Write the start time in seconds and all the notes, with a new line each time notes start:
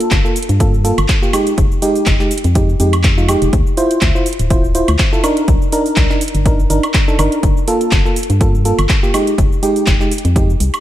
Already playing: A#3 F4 A4
0.00 closed hi-hat, shaker
0.11 G1, kick, clap, closed hi-hat, shaker
0.25 A#3 F4 A4, shaker
0.36 open hi-hat, shaker
0.42 closed hi-hat
0.49 G2, closed hi-hat, shaker
0.60 A#3 F4 A4, kick, closed hi-hat, shaker
0.74 shaker
0.84 A#3 F4 A4, open hi-hat, shaker
0.98 G1, closed hi-hat, high woodblock, shaker
1.08 kick, clap, closed hi-hat, shaker
1.22 A#3 F4 G4, shaker
1.33 G#3 D#4 G4, open hi-hat, high woodblock, shaker
1.47 closed hi-hat, shaker
1.58 F1, kick, closed hi-hat, shaker
1.72 shaker
1.82 G#3 D#4 G4, open hi-hat, shaker
1.96 open hi-hat, shaker
2.06 F1, kick, clap, closed hi-hat, shaker
2.19 G#3 D#4 G4, clap, shaker
2.31 open hi-hat, shaker
2.38 closed hi-hat
2.44 F2, closed hi-hat, shaker
2.55 G#3 D#4 G4, kick, closed hi-hat, shaker
2.69 shaker
2.80 F2 G#3 D#4 G4, open hi-hat, shaker
2.93 closed hi-hat, high woodblock, shaker
3.03 kick, clap, closed hi-hat, shaker
3.17 G#3 D#4 F4, shaker
3.28 G#3 D#4 G4, open hi-hat, high woodblock, shaker
3.42 F1, closed hi-hat, shaker
3.53 D2, kick, closed hi-hat, shaker
3.67 shaker
3.77 E4 F4 C5, open hi-hat, shaker
3.91 closed hi-hat, shaker
4.01 D2, kick, clap, closed hi-hat, shaker
4.15 E4 F4 C5, shaker
4.26 open hi-hat, shaker
4.33 closed hi-hat
4.39 D1, closed hi-hat, shaker
4.50 E4 F4 C5, kick, closed hi-hat, shaker
4.64 shaker
4.75 E4 F4 C5, open hi-hat, shaker
4.88 D2, closed hi-hat, high woodblock, shaker
4.99 kick, clap, closed hi-hat, shaker
5.13 E4 F4 A4, shaker
5.24 D4 D#4 A#4, open hi-hat, high woodblock, shaker
5.37 closed hi-hat, shaker
5.48 C2, kick, closed hi-hat, shaker
5.62 shaker
5.72 D4 D#4 A#4, open hi-hat, shaker
5.86 open hi-hat, shaker
5.96 C2, kick, clap, closed hi-hat, shaker
6.09 D4 D#4 A#4, clap, shaker
6.21 open hi-hat, shaker
6.28 closed hi-hat
6.34 G1, closed hi-hat, shaker
6.46 D4 D#4 A#4, kick, closed hi-hat, shaker
6.60 shaker
6.70 G1 D4 D#4 A#4, open hi-hat, shaker
6.83 closed hi-hat, high woodblock, shaker
6.94 kick, clap, closed hi-hat, shaker
7.08 D4 D#4 A4, shaker
7.19 G1 D4 D#4 A#4, open hi-hat, high woodblock, shaker
7.32 closed hi-hat, shaker
7.43 G1, kick, closed hi-hat, shaker
7.57 shaker
7.68 A#3 F4 A4, open hi-hat, shaker
7.81 closed hi-hat, shaker
7.91 G1, kick, clap, closed hi-hat, shaker
8.05 A#3 F4 A4, shaker
8.16 open hi-hat, shaker
8.23 closed hi-hat
8.30 G2, closed hi-hat, shaker
8.41 A#3 F4 A4, kick, closed hi-hat, shaker
8.55 shaker
8.65 A#3 F4 A4, open hi-hat, shaker
8.78 G1, closed hi-hat, high woodblock, shaker
8.89 kick, clap, closed hi-hat, shaker
9.03 A#3 F4 G4, shaker
9.14 G#3 D#4 G4, open hi-hat, high woodblock, shaker
9.27 closed hi-hat, shaker
9.38 F1, kick, closed hi-hat, shaker
9.52 shaker
9.63 G#3 D#4 G4, open hi-hat, shaker
9.76 open hi-hat, shaker
9.86 F1, kick, clap, closed hi-hat, shaker
10.00 G#3 D#4 G4, clap, shaker
10.12 open hi-hat, shaker
10.18 closed hi-hat
10.25 F2, closed hi-hat, shaker
10.36 G#3 D#4 G4, kick, closed hi-hat, shaker
10.50 shaker
10.60 C2, open hi-hat, shaker
10.74 closed hi-hat, high woodblock, shaker